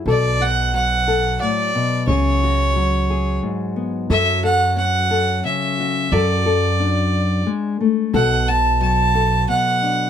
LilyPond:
<<
  \new Staff \with { instrumentName = "Fiddle" } { \time 3/4 \key b \dorian \tempo 4 = 89 d''8 fis''8 fis''4 d''4 | cis''2 r4 | e''8 fis''8 fis''4 e''4 | d''2 r4 |
fis''8 a''8 a''4 fis''4 | }
  \new Staff \with { instrumentName = "Nylon-string guitar" } { \time 3/4 \key b \dorian << { a'8 fis'4 a'4. | gis'8 fis'4 gis'4 b8 | a'8 a'4 a'4 fis'8 | a'8 a'4 r4. |
a'8 fis'4 a'4 d'8 | } \\ { <b, fis>4 fis4 a,8 b,8 | cis4 fis4 gis,4 | fis4 cis'4 cis4 | fis4 d'4 gis8 a8 |
b,4 fis4 b,4 | } >> }
  \new Staff \with { instrumentName = "Upright bass" } { \clef bass \time 3/4 \key b \dorian b,,2 r4 | cis,2 r4 | fis,2 r4 | fis,2 r4 |
b,,2 r4 | }
>>